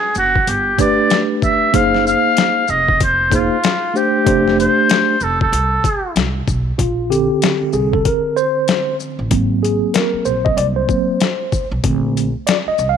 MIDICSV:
0, 0, Header, 1, 6, 480
1, 0, Start_track
1, 0, Key_signature, -2, "major"
1, 0, Tempo, 631579
1, 1321, Time_signature, 4, 2, 24, 8
1, 9857, End_track
2, 0, Start_track
2, 0, Title_t, "Muted trumpet"
2, 0, Program_c, 0, 59
2, 0, Note_on_c, 0, 68, 92
2, 112, Note_off_c, 0, 68, 0
2, 134, Note_on_c, 0, 66, 90
2, 374, Note_on_c, 0, 67, 84
2, 385, Note_off_c, 0, 66, 0
2, 614, Note_on_c, 0, 74, 95
2, 625, Note_off_c, 0, 67, 0
2, 890, Note_off_c, 0, 74, 0
2, 1092, Note_on_c, 0, 76, 98
2, 1334, Note_on_c, 0, 77, 109
2, 1345, Note_off_c, 0, 76, 0
2, 1567, Note_off_c, 0, 77, 0
2, 1576, Note_on_c, 0, 77, 108
2, 2054, Note_on_c, 0, 75, 100
2, 2066, Note_off_c, 0, 77, 0
2, 2288, Note_off_c, 0, 75, 0
2, 2301, Note_on_c, 0, 72, 91
2, 2541, Note_on_c, 0, 65, 86
2, 2552, Note_off_c, 0, 72, 0
2, 3015, Note_on_c, 0, 67, 86
2, 3026, Note_off_c, 0, 65, 0
2, 3488, Note_off_c, 0, 67, 0
2, 3492, Note_on_c, 0, 72, 98
2, 3976, Note_on_c, 0, 69, 93
2, 3987, Note_off_c, 0, 72, 0
2, 4116, Note_off_c, 0, 69, 0
2, 4123, Note_on_c, 0, 69, 78
2, 4658, Note_off_c, 0, 69, 0
2, 9857, End_track
3, 0, Start_track
3, 0, Title_t, "Tine electric piano"
3, 0, Program_c, 1, 4
3, 592, Note_on_c, 1, 57, 65
3, 599, Note_on_c, 1, 62, 60
3, 606, Note_on_c, 1, 67, 63
3, 611, Note_on_c, 1, 71, 69
3, 1280, Note_off_c, 1, 57, 0
3, 1283, Note_off_c, 1, 62, 0
3, 1287, Note_off_c, 1, 67, 0
3, 1289, Note_off_c, 1, 71, 0
3, 1312, Note_on_c, 1, 58, 64
3, 1319, Note_on_c, 1, 63, 61
3, 1326, Note_on_c, 1, 68, 63
3, 1331, Note_on_c, 1, 72, 74
3, 1999, Note_off_c, 1, 58, 0
3, 2003, Note_off_c, 1, 63, 0
3, 2007, Note_off_c, 1, 68, 0
3, 2009, Note_off_c, 1, 72, 0
3, 2511, Note_on_c, 1, 58, 66
3, 2518, Note_on_c, 1, 63, 60
3, 2524, Note_on_c, 1, 68, 58
3, 2533, Note_on_c, 1, 72, 70
3, 2701, Note_off_c, 1, 58, 0
3, 2704, Note_off_c, 1, 63, 0
3, 2707, Note_off_c, 1, 68, 0
3, 2712, Note_off_c, 1, 72, 0
3, 2992, Note_on_c, 1, 57, 61
3, 2997, Note_on_c, 1, 62, 55
3, 3005, Note_on_c, 1, 67, 58
3, 3011, Note_on_c, 1, 72, 68
3, 3216, Note_off_c, 1, 57, 0
3, 3223, Note_off_c, 1, 62, 0
3, 3226, Note_on_c, 1, 57, 80
3, 3231, Note_off_c, 1, 67, 0
3, 3232, Note_on_c, 1, 62, 67
3, 3239, Note_off_c, 1, 72, 0
3, 3240, Note_on_c, 1, 67, 69
3, 3248, Note_on_c, 1, 72, 82
3, 3916, Note_off_c, 1, 57, 0
3, 3919, Note_off_c, 1, 62, 0
3, 3923, Note_off_c, 1, 67, 0
3, 3927, Note_off_c, 1, 72, 0
3, 5155, Note_on_c, 1, 65, 76
3, 5393, Note_on_c, 1, 50, 52
3, 5398, Note_on_c, 1, 69, 51
3, 5399, Note_on_c, 1, 67, 87
3, 5403, Note_on_c, 1, 60, 59
3, 5405, Note_off_c, 1, 65, 0
3, 5876, Note_on_c, 1, 68, 82
3, 5894, Note_off_c, 1, 67, 0
3, 6016, Note_off_c, 1, 68, 0
3, 6018, Note_off_c, 1, 69, 0
3, 6027, Note_on_c, 1, 69, 86
3, 6120, Note_on_c, 1, 70, 88
3, 6123, Note_off_c, 1, 69, 0
3, 6357, Note_on_c, 1, 72, 102
3, 6368, Note_off_c, 1, 70, 0
3, 6809, Note_off_c, 1, 72, 0
3, 7047, Note_off_c, 1, 50, 0
3, 7052, Note_off_c, 1, 60, 0
3, 7071, Note_on_c, 1, 54, 50
3, 7076, Note_on_c, 1, 58, 50
3, 7079, Note_on_c, 1, 60, 57
3, 7316, Note_on_c, 1, 68, 77
3, 7555, Note_on_c, 1, 70, 86
3, 7566, Note_off_c, 1, 68, 0
3, 7793, Note_on_c, 1, 72, 92
3, 7805, Note_off_c, 1, 70, 0
3, 7940, Note_on_c, 1, 75, 94
3, 7949, Note_off_c, 1, 72, 0
3, 8033, Note_on_c, 1, 74, 90
3, 8040, Note_off_c, 1, 75, 0
3, 8101, Note_off_c, 1, 74, 0
3, 8179, Note_on_c, 1, 72, 85
3, 8262, Note_off_c, 1, 54, 0
3, 8265, Note_off_c, 1, 58, 0
3, 8268, Note_off_c, 1, 60, 0
3, 8271, Note_on_c, 1, 54, 49
3, 8274, Note_on_c, 1, 58, 47
3, 8277, Note_on_c, 1, 60, 51
3, 8491, Note_off_c, 1, 54, 0
3, 8493, Note_off_c, 1, 58, 0
3, 8495, Note_off_c, 1, 60, 0
3, 8873, Note_off_c, 1, 72, 0
3, 8993, Note_on_c, 1, 50, 57
3, 8997, Note_on_c, 1, 57, 49
3, 9002, Note_on_c, 1, 60, 65
3, 9337, Note_off_c, 1, 50, 0
3, 9339, Note_off_c, 1, 57, 0
3, 9342, Note_off_c, 1, 60, 0
3, 9475, Note_on_c, 1, 74, 90
3, 9548, Note_off_c, 1, 74, 0
3, 9636, Note_on_c, 1, 75, 94
3, 9798, Note_on_c, 1, 77, 93
3, 9804, Note_off_c, 1, 75, 0
3, 9857, Note_off_c, 1, 77, 0
3, 9857, End_track
4, 0, Start_track
4, 0, Title_t, "Upright bass"
4, 0, Program_c, 2, 32
4, 117, Note_on_c, 2, 30, 93
4, 301, Note_off_c, 2, 30, 0
4, 359, Note_on_c, 2, 31, 93
4, 541, Note_off_c, 2, 31, 0
4, 1321, Note_on_c, 2, 30, 96
4, 1614, Note_off_c, 2, 30, 0
4, 2042, Note_on_c, 2, 29, 90
4, 2639, Note_off_c, 2, 29, 0
4, 3241, Note_on_c, 2, 29, 99
4, 3535, Note_off_c, 2, 29, 0
4, 3961, Note_on_c, 2, 29, 80
4, 4142, Note_off_c, 2, 29, 0
4, 4198, Note_on_c, 2, 36, 93
4, 4381, Note_off_c, 2, 36, 0
4, 4679, Note_on_c, 2, 36, 88
4, 4862, Note_off_c, 2, 36, 0
4, 4921, Note_on_c, 2, 35, 92
4, 5102, Note_off_c, 2, 35, 0
4, 5159, Note_on_c, 2, 34, 96
4, 5523, Note_off_c, 2, 34, 0
4, 5878, Note_on_c, 2, 36, 83
4, 6061, Note_off_c, 2, 36, 0
4, 6983, Note_on_c, 2, 33, 88
4, 7055, Note_off_c, 2, 33, 0
4, 7075, Note_on_c, 2, 32, 100
4, 7441, Note_off_c, 2, 32, 0
4, 7796, Note_on_c, 2, 34, 84
4, 7979, Note_off_c, 2, 34, 0
4, 8034, Note_on_c, 2, 36, 94
4, 8218, Note_off_c, 2, 36, 0
4, 8903, Note_on_c, 2, 35, 96
4, 8975, Note_off_c, 2, 35, 0
4, 8995, Note_on_c, 2, 34, 101
4, 9361, Note_off_c, 2, 34, 0
4, 9718, Note_on_c, 2, 36, 88
4, 9857, Note_off_c, 2, 36, 0
4, 9857, End_track
5, 0, Start_track
5, 0, Title_t, "Muted upright bass strokes"
5, 5785, Note_on_c, 9, 29, 42
5, 5861, Note_off_c, 9, 29, 0
5, 7703, Note_on_c, 9, 29, 43
5, 7779, Note_off_c, 9, 29, 0
5, 9626, Note_on_c, 9, 29, 44
5, 9702, Note_off_c, 9, 29, 0
5, 9857, End_track
6, 0, Start_track
6, 0, Title_t, "Drums"
6, 111, Note_on_c, 9, 82, 60
6, 187, Note_off_c, 9, 82, 0
6, 271, Note_on_c, 9, 36, 83
6, 347, Note_off_c, 9, 36, 0
6, 360, Note_on_c, 9, 42, 75
6, 436, Note_off_c, 9, 42, 0
6, 597, Note_on_c, 9, 36, 88
6, 599, Note_on_c, 9, 42, 48
6, 599, Note_on_c, 9, 82, 49
6, 673, Note_off_c, 9, 36, 0
6, 675, Note_off_c, 9, 42, 0
6, 675, Note_off_c, 9, 82, 0
6, 838, Note_on_c, 9, 42, 59
6, 847, Note_on_c, 9, 38, 101
6, 914, Note_off_c, 9, 42, 0
6, 923, Note_off_c, 9, 38, 0
6, 1082, Note_on_c, 9, 36, 105
6, 1084, Note_on_c, 9, 82, 46
6, 1158, Note_off_c, 9, 36, 0
6, 1160, Note_off_c, 9, 82, 0
6, 1321, Note_on_c, 9, 36, 107
6, 1321, Note_on_c, 9, 42, 78
6, 1397, Note_off_c, 9, 36, 0
6, 1397, Note_off_c, 9, 42, 0
6, 1478, Note_on_c, 9, 38, 32
6, 1554, Note_off_c, 9, 38, 0
6, 1574, Note_on_c, 9, 82, 52
6, 1650, Note_off_c, 9, 82, 0
6, 1800, Note_on_c, 9, 42, 75
6, 1811, Note_on_c, 9, 38, 109
6, 1876, Note_off_c, 9, 42, 0
6, 1887, Note_off_c, 9, 38, 0
6, 2034, Note_on_c, 9, 82, 56
6, 2110, Note_off_c, 9, 82, 0
6, 2192, Note_on_c, 9, 36, 80
6, 2268, Note_off_c, 9, 36, 0
6, 2283, Note_on_c, 9, 42, 75
6, 2285, Note_on_c, 9, 36, 87
6, 2359, Note_off_c, 9, 42, 0
6, 2361, Note_off_c, 9, 36, 0
6, 2520, Note_on_c, 9, 36, 96
6, 2524, Note_on_c, 9, 42, 49
6, 2524, Note_on_c, 9, 82, 53
6, 2596, Note_off_c, 9, 36, 0
6, 2600, Note_off_c, 9, 42, 0
6, 2600, Note_off_c, 9, 82, 0
6, 2763, Note_on_c, 9, 42, 64
6, 2771, Note_on_c, 9, 38, 107
6, 2839, Note_off_c, 9, 42, 0
6, 2847, Note_off_c, 9, 38, 0
6, 3007, Note_on_c, 9, 82, 48
6, 3083, Note_off_c, 9, 82, 0
6, 3241, Note_on_c, 9, 36, 108
6, 3242, Note_on_c, 9, 42, 75
6, 3317, Note_off_c, 9, 36, 0
6, 3318, Note_off_c, 9, 42, 0
6, 3402, Note_on_c, 9, 38, 34
6, 3478, Note_off_c, 9, 38, 0
6, 3495, Note_on_c, 9, 42, 50
6, 3495, Note_on_c, 9, 82, 47
6, 3571, Note_off_c, 9, 42, 0
6, 3571, Note_off_c, 9, 82, 0
6, 3720, Note_on_c, 9, 42, 73
6, 3731, Note_on_c, 9, 38, 114
6, 3796, Note_off_c, 9, 42, 0
6, 3807, Note_off_c, 9, 38, 0
6, 3955, Note_on_c, 9, 82, 59
6, 4031, Note_off_c, 9, 82, 0
6, 4112, Note_on_c, 9, 36, 91
6, 4188, Note_off_c, 9, 36, 0
6, 4203, Note_on_c, 9, 42, 75
6, 4279, Note_off_c, 9, 42, 0
6, 4439, Note_on_c, 9, 36, 94
6, 4443, Note_on_c, 9, 42, 51
6, 4443, Note_on_c, 9, 82, 52
6, 4515, Note_off_c, 9, 36, 0
6, 4519, Note_off_c, 9, 42, 0
6, 4519, Note_off_c, 9, 82, 0
6, 4681, Note_on_c, 9, 42, 64
6, 4689, Note_on_c, 9, 38, 115
6, 4757, Note_off_c, 9, 42, 0
6, 4765, Note_off_c, 9, 38, 0
6, 4922, Note_on_c, 9, 36, 94
6, 4925, Note_on_c, 9, 82, 52
6, 4998, Note_off_c, 9, 36, 0
6, 5001, Note_off_c, 9, 82, 0
6, 5160, Note_on_c, 9, 36, 100
6, 5161, Note_on_c, 9, 42, 73
6, 5236, Note_off_c, 9, 36, 0
6, 5237, Note_off_c, 9, 42, 0
6, 5412, Note_on_c, 9, 42, 47
6, 5412, Note_on_c, 9, 82, 50
6, 5488, Note_off_c, 9, 42, 0
6, 5488, Note_off_c, 9, 82, 0
6, 5640, Note_on_c, 9, 42, 72
6, 5651, Note_on_c, 9, 38, 110
6, 5716, Note_off_c, 9, 42, 0
6, 5727, Note_off_c, 9, 38, 0
6, 5873, Note_on_c, 9, 82, 52
6, 5949, Note_off_c, 9, 82, 0
6, 6030, Note_on_c, 9, 36, 79
6, 6106, Note_off_c, 9, 36, 0
6, 6120, Note_on_c, 9, 42, 74
6, 6121, Note_on_c, 9, 36, 86
6, 6196, Note_off_c, 9, 42, 0
6, 6197, Note_off_c, 9, 36, 0
6, 6361, Note_on_c, 9, 82, 50
6, 6437, Note_off_c, 9, 82, 0
6, 6595, Note_on_c, 9, 42, 62
6, 6603, Note_on_c, 9, 38, 104
6, 6671, Note_off_c, 9, 42, 0
6, 6679, Note_off_c, 9, 38, 0
6, 6838, Note_on_c, 9, 82, 49
6, 6914, Note_off_c, 9, 82, 0
6, 7074, Note_on_c, 9, 42, 72
6, 7077, Note_on_c, 9, 36, 103
6, 7150, Note_off_c, 9, 42, 0
6, 7153, Note_off_c, 9, 36, 0
6, 7330, Note_on_c, 9, 42, 48
6, 7330, Note_on_c, 9, 82, 51
6, 7406, Note_off_c, 9, 42, 0
6, 7406, Note_off_c, 9, 82, 0
6, 7555, Note_on_c, 9, 42, 68
6, 7566, Note_on_c, 9, 38, 105
6, 7631, Note_off_c, 9, 42, 0
6, 7642, Note_off_c, 9, 38, 0
6, 7791, Note_on_c, 9, 82, 60
6, 7867, Note_off_c, 9, 82, 0
6, 7948, Note_on_c, 9, 36, 86
6, 8024, Note_off_c, 9, 36, 0
6, 8038, Note_on_c, 9, 42, 68
6, 8114, Note_off_c, 9, 42, 0
6, 8275, Note_on_c, 9, 36, 90
6, 8278, Note_on_c, 9, 82, 47
6, 8351, Note_off_c, 9, 36, 0
6, 8354, Note_off_c, 9, 82, 0
6, 8515, Note_on_c, 9, 42, 66
6, 8524, Note_on_c, 9, 38, 109
6, 8591, Note_off_c, 9, 42, 0
6, 8600, Note_off_c, 9, 38, 0
6, 8758, Note_on_c, 9, 36, 93
6, 8759, Note_on_c, 9, 82, 45
6, 8834, Note_off_c, 9, 36, 0
6, 8835, Note_off_c, 9, 82, 0
6, 8996, Note_on_c, 9, 36, 107
6, 8996, Note_on_c, 9, 42, 79
6, 9072, Note_off_c, 9, 36, 0
6, 9072, Note_off_c, 9, 42, 0
6, 9251, Note_on_c, 9, 42, 52
6, 9251, Note_on_c, 9, 82, 47
6, 9327, Note_off_c, 9, 42, 0
6, 9327, Note_off_c, 9, 82, 0
6, 9478, Note_on_c, 9, 42, 77
6, 9490, Note_on_c, 9, 38, 115
6, 9554, Note_off_c, 9, 42, 0
6, 9566, Note_off_c, 9, 38, 0
6, 9714, Note_on_c, 9, 82, 55
6, 9790, Note_off_c, 9, 82, 0
6, 9857, End_track
0, 0, End_of_file